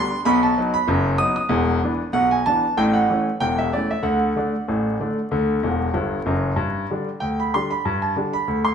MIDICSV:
0, 0, Header, 1, 2, 480
1, 0, Start_track
1, 0, Key_signature, 1, "major"
1, 0, Tempo, 632911
1, 197, Time_signature, 2, 2, 24, 8
1, 6632, End_track
2, 0, Start_track
2, 0, Title_t, "Grand piano"
2, 0, Program_c, 0, 0
2, 0, Note_on_c, 0, 55, 62
2, 0, Note_on_c, 0, 59, 53
2, 0, Note_on_c, 0, 62, 60
2, 0, Note_on_c, 0, 84, 111
2, 90, Note_off_c, 0, 55, 0
2, 93, Note_off_c, 0, 59, 0
2, 94, Note_off_c, 0, 62, 0
2, 147, Note_off_c, 0, 84, 0
2, 192, Note_on_c, 0, 83, 114
2, 196, Note_on_c, 0, 35, 89
2, 196, Note_on_c, 0, 47, 100
2, 326, Note_off_c, 0, 83, 0
2, 326, Note_on_c, 0, 81, 90
2, 399, Note_off_c, 0, 47, 0
2, 400, Note_off_c, 0, 35, 0
2, 439, Note_on_c, 0, 54, 66
2, 442, Note_on_c, 0, 59, 56
2, 444, Note_on_c, 0, 63, 64
2, 518, Note_off_c, 0, 81, 0
2, 559, Note_on_c, 0, 83, 103
2, 569, Note_off_c, 0, 54, 0
2, 572, Note_off_c, 0, 59, 0
2, 573, Note_off_c, 0, 63, 0
2, 664, Note_on_c, 0, 30, 89
2, 668, Note_on_c, 0, 42, 86
2, 872, Note_off_c, 0, 30, 0
2, 874, Note_off_c, 0, 42, 0
2, 892, Note_off_c, 0, 83, 0
2, 897, Note_on_c, 0, 87, 113
2, 900, Note_on_c, 0, 54, 61
2, 908, Note_on_c, 0, 59, 51
2, 908, Note_on_c, 0, 63, 57
2, 1019, Note_off_c, 0, 87, 0
2, 1031, Note_on_c, 0, 87, 89
2, 1035, Note_off_c, 0, 54, 0
2, 1041, Note_off_c, 0, 59, 0
2, 1041, Note_off_c, 0, 63, 0
2, 1130, Note_on_c, 0, 40, 99
2, 1131, Note_on_c, 0, 28, 86
2, 1146, Note_off_c, 0, 87, 0
2, 1343, Note_off_c, 0, 28, 0
2, 1343, Note_off_c, 0, 40, 0
2, 1389, Note_on_c, 0, 52, 58
2, 1389, Note_on_c, 0, 59, 58
2, 1392, Note_on_c, 0, 62, 57
2, 1521, Note_off_c, 0, 52, 0
2, 1521, Note_off_c, 0, 59, 0
2, 1523, Note_off_c, 0, 62, 0
2, 1615, Note_on_c, 0, 47, 75
2, 1617, Note_on_c, 0, 78, 103
2, 1622, Note_on_c, 0, 35, 78
2, 1753, Note_on_c, 0, 80, 83
2, 1755, Note_off_c, 0, 78, 0
2, 1825, Note_off_c, 0, 47, 0
2, 1829, Note_off_c, 0, 35, 0
2, 1865, Note_off_c, 0, 80, 0
2, 1865, Note_on_c, 0, 81, 101
2, 1869, Note_on_c, 0, 52, 52
2, 1874, Note_on_c, 0, 59, 49
2, 1875, Note_on_c, 0, 62, 54
2, 2001, Note_off_c, 0, 52, 0
2, 2004, Note_off_c, 0, 59, 0
2, 2005, Note_off_c, 0, 62, 0
2, 2095, Note_off_c, 0, 81, 0
2, 2102, Note_on_c, 0, 33, 77
2, 2103, Note_on_c, 0, 45, 89
2, 2105, Note_on_c, 0, 79, 103
2, 2225, Note_on_c, 0, 78, 90
2, 2238, Note_off_c, 0, 79, 0
2, 2309, Note_off_c, 0, 33, 0
2, 2310, Note_off_c, 0, 45, 0
2, 2349, Note_on_c, 0, 52, 53
2, 2352, Note_on_c, 0, 57, 60
2, 2359, Note_on_c, 0, 61, 56
2, 2481, Note_off_c, 0, 52, 0
2, 2483, Note_off_c, 0, 57, 0
2, 2488, Note_off_c, 0, 61, 0
2, 2510, Note_off_c, 0, 78, 0
2, 2582, Note_on_c, 0, 79, 97
2, 2583, Note_on_c, 0, 28, 74
2, 2585, Note_on_c, 0, 40, 70
2, 2717, Note_off_c, 0, 79, 0
2, 2718, Note_on_c, 0, 76, 82
2, 2790, Note_off_c, 0, 28, 0
2, 2791, Note_off_c, 0, 40, 0
2, 2828, Note_off_c, 0, 76, 0
2, 2831, Note_on_c, 0, 74, 81
2, 2838, Note_on_c, 0, 52, 45
2, 2841, Note_on_c, 0, 57, 48
2, 2841, Note_on_c, 0, 61, 53
2, 2962, Note_off_c, 0, 74, 0
2, 2962, Note_on_c, 0, 76, 77
2, 2968, Note_off_c, 0, 52, 0
2, 2970, Note_off_c, 0, 57, 0
2, 2970, Note_off_c, 0, 61, 0
2, 3053, Note_on_c, 0, 50, 67
2, 3057, Note_on_c, 0, 78, 85
2, 3058, Note_on_c, 0, 38, 75
2, 3070, Note_off_c, 0, 76, 0
2, 3266, Note_off_c, 0, 50, 0
2, 3268, Note_off_c, 0, 38, 0
2, 3306, Note_on_c, 0, 50, 47
2, 3312, Note_on_c, 0, 57, 53
2, 3312, Note_on_c, 0, 62, 58
2, 3440, Note_off_c, 0, 50, 0
2, 3444, Note_off_c, 0, 57, 0
2, 3445, Note_off_c, 0, 62, 0
2, 3550, Note_on_c, 0, 45, 68
2, 3552, Note_on_c, 0, 33, 68
2, 3756, Note_off_c, 0, 45, 0
2, 3757, Note_off_c, 0, 33, 0
2, 3791, Note_on_c, 0, 50, 49
2, 3797, Note_on_c, 0, 57, 49
2, 3797, Note_on_c, 0, 62, 55
2, 3924, Note_off_c, 0, 50, 0
2, 3928, Note_off_c, 0, 57, 0
2, 3929, Note_off_c, 0, 62, 0
2, 4028, Note_on_c, 0, 38, 79
2, 4032, Note_on_c, 0, 50, 68
2, 4236, Note_off_c, 0, 38, 0
2, 4238, Note_off_c, 0, 50, 0
2, 4270, Note_on_c, 0, 40, 77
2, 4273, Note_on_c, 0, 28, 71
2, 4453, Note_off_c, 0, 40, 0
2, 4454, Note_off_c, 0, 28, 0
2, 4479, Note_off_c, 0, 78, 0
2, 4500, Note_on_c, 0, 31, 66
2, 4503, Note_on_c, 0, 43, 67
2, 4687, Note_off_c, 0, 31, 0
2, 4689, Note_off_c, 0, 43, 0
2, 4746, Note_on_c, 0, 30, 74
2, 4749, Note_on_c, 0, 42, 75
2, 4930, Note_off_c, 0, 30, 0
2, 4933, Note_off_c, 0, 42, 0
2, 4976, Note_on_c, 0, 43, 77
2, 5189, Note_off_c, 0, 43, 0
2, 5236, Note_on_c, 0, 50, 51
2, 5239, Note_on_c, 0, 55, 45
2, 5240, Note_on_c, 0, 62, 50
2, 5368, Note_off_c, 0, 50, 0
2, 5371, Note_off_c, 0, 55, 0
2, 5371, Note_off_c, 0, 62, 0
2, 5462, Note_on_c, 0, 79, 79
2, 5470, Note_on_c, 0, 38, 60
2, 5601, Note_off_c, 0, 79, 0
2, 5610, Note_on_c, 0, 83, 80
2, 5677, Note_off_c, 0, 38, 0
2, 5717, Note_off_c, 0, 83, 0
2, 5720, Note_on_c, 0, 84, 84
2, 5722, Note_on_c, 0, 50, 49
2, 5726, Note_on_c, 0, 62, 48
2, 5727, Note_on_c, 0, 55, 50
2, 5844, Note_on_c, 0, 83, 81
2, 5849, Note_off_c, 0, 84, 0
2, 5852, Note_off_c, 0, 50, 0
2, 5855, Note_off_c, 0, 55, 0
2, 5855, Note_off_c, 0, 62, 0
2, 5956, Note_on_c, 0, 43, 73
2, 6037, Note_off_c, 0, 83, 0
2, 6083, Note_on_c, 0, 81, 74
2, 6160, Note_off_c, 0, 43, 0
2, 6190, Note_on_c, 0, 50, 46
2, 6192, Note_on_c, 0, 62, 52
2, 6199, Note_on_c, 0, 55, 48
2, 6312, Note_off_c, 0, 81, 0
2, 6320, Note_on_c, 0, 83, 85
2, 6324, Note_off_c, 0, 50, 0
2, 6325, Note_off_c, 0, 62, 0
2, 6330, Note_off_c, 0, 55, 0
2, 6428, Note_on_c, 0, 38, 64
2, 6514, Note_off_c, 0, 83, 0
2, 6556, Note_on_c, 0, 84, 85
2, 6632, Note_off_c, 0, 38, 0
2, 6632, Note_off_c, 0, 84, 0
2, 6632, End_track
0, 0, End_of_file